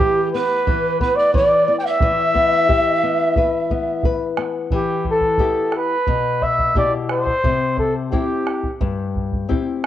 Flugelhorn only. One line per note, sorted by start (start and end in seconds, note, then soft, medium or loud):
0.00 0.28 G4 medium
0.34 0.97 B4 loud
1.01 1.17 B4 medium
1.16 1.33 D5 medium
1.34 1.74 D5 medium
1.79 1.88 G5 medium
1.86 4.06 E5 loud
4.75 5.05 G4 medium
5.11 5.73 A4 medium
5.76 6.45 B4 loud
6.43 6.77 E5 loud
6.78 6.93 D5 medium
7.12 7.75 C5 medium
7.79 7.94 A4 medium
8.12 8.77 G4 medium